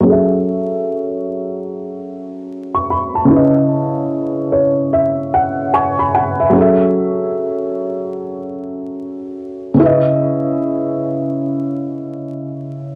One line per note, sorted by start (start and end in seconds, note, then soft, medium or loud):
0.01 3.23 F#3 medium
0.01 3.25 C#4 medium
0.06 3.26 G#4 medium
0.06 3.27 A4 medium
0.12 3.29 E5 medium
2.75 2.89 C#6 medium
2.90 3.13 B5 medium
3.15 3.53 A5 medium
3.25 6.47 C#3 medium
3.25 6.49 C#4 medium
3.30 6.50 E4 medium
3.30 6.52 B4 medium
3.36 5.72 D#5 medium
4.52 4.89 C#5 medium
4.93 5.30 E5 medium
5.34 5.71 F#5 medium
5.74 6.11 G#5 medium
5.74 5.97 C#6 medium
5.99 6.13 B5 medium
6.15 6.52 F#5 medium
6.15 6.38 G#5 medium
6.40 6.59 E5 medium
6.50 9.72 F#3 medium
6.50 9.73 C#4 medium
6.55 9.75 G#4 medium
6.55 9.76 A4 medium
6.61 9.78 E5 medium
9.74 12.95 C#3 medium
9.74 12.95 C#4 medium
9.80 12.95 E4 medium
9.80 12.95 B4 medium
9.85 12.95 D#5 medium